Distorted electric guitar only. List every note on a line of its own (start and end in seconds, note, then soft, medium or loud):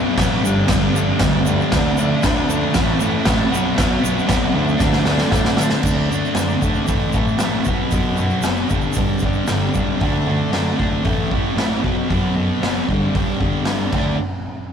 0.00 0.15 B2 medium
0.00 0.16 F#3 medium
0.00 0.17 B3 loud
0.16 0.41 B2 loud
0.16 0.41 F#3 loud
0.16 0.42 B3 loud
0.43 0.67 G2 loud
0.43 0.68 D3 loud
0.43 0.68 G3 loud
0.68 0.94 G2 loud
0.68 0.95 D3 loud
0.68 0.95 G3 loud
0.96 1.21 G2 medium
0.96 1.21 D3 loud
0.96 1.21 G3 loud
1.22 1.46 G2 medium
1.22 1.47 D3 medium
1.22 1.48 G3 loud
1.48 1.71 G2 medium
1.48 1.71 D3 loud
1.48 1.71 G3 loud
1.72 1.97 D3 loud
1.72 1.98 A3 loud
1.72 1.99 D4 loud
1.98 2.22 D3 medium
1.98 2.22 A3 medium
1.98 2.23 D4 loud
2.23 2.47 D3 loud
2.23 2.49 A3 loud
2.23 2.49 D4 loud
2.48 2.73 D3 loud
2.48 2.73 A3 loud
2.48 2.74 D4 loud
2.75 2.98 A2 loud
2.75 3.00 E3 loud
2.75 3.00 A3 loud
2.99 3.24 A2 medium
2.99 3.25 E3 medium
2.99 3.26 A3 loud
3.25 3.50 A2 loud
3.25 3.50 E3 medium
3.25 3.51 A3 loud
3.51 3.74 B2 medium
3.51 3.74 F#3 loud
3.51 3.75 B3 loud
3.75 4.01 B2 loud
3.75 4.01 F#3 loud
3.75 4.02 B3 loud
4.02 4.25 B2 loud
4.02 4.26 F#3 medium
4.02 4.26 B3 loud
4.27 4.52 B2 medium
4.27 4.52 F#3 loud
4.27 4.52 B3 loud
4.54 4.78 D3 loud
4.54 4.78 A3 loud
4.54 4.80 D4 loud
4.79 5.03 D3 loud
4.79 5.04 A3 loud
4.79 5.04 D4 loud
5.05 5.30 D3 medium
5.05 5.30 A3 medium
5.05 5.31 D4 loud
5.31 5.55 D3 medium
5.31 5.56 A3 medium
5.31 5.56 D4 medium
5.57 5.81 D3 loud
5.57 5.82 A3 medium
5.57 5.82 D4 loud
5.82 6.07 D3 medium
5.82 6.09 A3 loud
5.82 6.09 D4 medium
6.09 6.35 D3 medium
6.09 6.36 A3 medium
6.09 6.37 D4 medium
6.36 6.61 D3 medium
6.36 6.62 A3 medium
6.36 6.63 D4 medium
6.62 6.85 D3 medium
6.62 6.86 A3 loud
6.62 6.87 D4 medium
6.86 7.13 A2 medium
6.86 7.13 E3 loud
6.86 7.14 A3 loud
7.14 7.39 A2 medium
7.14 7.39 E3 medium
7.14 7.41 A3 medium
7.40 7.64 A2 medium
7.40 7.65 E3 medium
7.40 7.65 A3 medium
7.67 7.91 B2 medium
7.67 7.92 F#3 medium
7.67 7.93 B3 loud
7.93 8.17 B2 medium
7.93 8.18 F#3 loud
7.93 8.19 B3 loud
8.18 8.43 B2 medium
8.18 8.44 F#3 loud
8.18 8.45 B3 medium
8.44 8.68 B2 medium
8.44 8.69 F#3 medium
8.44 8.69 B3 loud
8.69 8.96 G2 loud
8.69 8.97 D3 loud
8.69 8.97 G3 loud
8.97 9.22 G2 medium
8.97 9.23 D3 loud
8.97 9.24 G3 loud
9.23 9.48 G2 medium
9.23 9.49 D3 medium
9.23 9.49 G3 medium
9.49 9.74 G2 medium
9.49 9.75 D3 medium
9.49 9.76 G3 medium
9.75 9.99 G2 medium
9.75 9.99 D3 medium
9.75 10.00 G3 medium
10.01 10.26 D3 loud
10.01 10.27 A3 medium
10.01 10.28 D4 loud
10.27 10.50 D3 medium
10.27 10.52 A3 medium
10.27 10.51 D4 medium
10.51 10.76 D3 medium
10.51 10.76 A3 loud
10.51 10.77 D4 loud
10.77 11.02 D3 medium
10.77 11.02 A3 medium
10.77 11.03 D4 loud
11.04 11.30 A2 medium
11.04 11.31 E3 loud
11.04 11.33 A3 loud
11.31 11.55 A2 medium
11.31 11.55 E3 medium
11.31 11.56 A3 medium
11.56 11.81 A2 medium
11.56 11.81 E3 medium
11.56 11.82 A3 medium
11.83 12.08 B2 medium
11.83 12.09 F#3 loud
11.83 12.10 B3 medium
12.09 12.34 B2 medium
12.09 12.36 F#3 medium
12.09 12.36 B3 medium
12.35 12.61 B2 medium
12.35 12.62 F#3 medium
12.35 12.62 B3 medium
12.62 12.86 B2 medium
12.62 12.87 F#3 medium
12.62 12.87 B3 medium
12.88 13.13 G2 medium
12.88 13.15 D3 loud
12.88 13.15 G3 loud
13.15 13.39 G2 loud
13.15 13.40 D3 medium
13.15 13.41 G3 medium
13.40 13.65 G2 medium
13.40 13.66 D3 medium
13.40 13.67 G3 medium
13.67 13.92 G2 medium
13.67 13.93 D3 medium
13.67 13.93 G3 medium
13.95 14.14 D3 medium
13.95 14.15 A3 medium
13.95 14.15 D4 loud